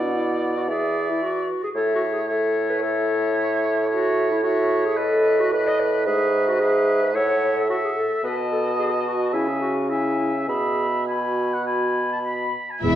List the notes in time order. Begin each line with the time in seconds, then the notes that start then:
Already playing: B2 D5 F#5
0.03 D4
0.15 E4
0.57 F#4
0.69 E3 G#4 D5 E5
1.10 E4
1.23 F#4
1.64 G#4
1.75 A2 A4 C#5 E5
1.95 F#4
2.13 G#4
2.28 A4 C#5 E5
2.70 B4
2.82 A4 C#5 E5
3.89 F#4 C#5 E5
4.31 E4
4.43 F#4 C#5 E5
4.85 G#4
4.97 A4 B4 D#5
5.41 F#4
5.52 B4 D#5
5.68 D#5
5.80 B4
6.06 G#2 G#4 B4 E5
6.48 F#4
6.61 G#4 B4 E5
7.02 B4
7.14 A2 C#5 E5 F#5
7.57 A4
7.70 F#4 E5 F#5
7.85 G#4
7.97 A4
8.24 B2 B4 D#5 A5
8.52 A4
8.79 G#4
9.05 F#4
9.34 C#3 E4 E5 G#5
9.48 G#4
9.61 F#4
9.90 E4 E5 G#5
10.19 E4
10.48 B2 G#4 E5 B5
11.08 F#4 G#5 B5
11.54 F#5
11.66 G#5 B5
12.12 A5
12.26 B5
12.70 G#5
12.82 E1 E2 E3 G#3 B3 E4 G#4 E5